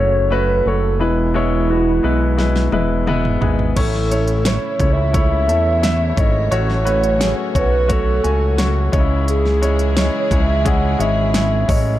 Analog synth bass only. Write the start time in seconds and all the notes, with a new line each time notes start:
Already playing: F#1
0.66 F#1
1.01 E1
2.04 B1
2.73 E1
3.41 G#1
3.77 A1
4.80 C#2
5.48 E2
6.17 G#1
6.51 A1
7.55 B1
8.25 C#2
8.93 C#2
10.31 C#2
11.00 G#1
11.69 A1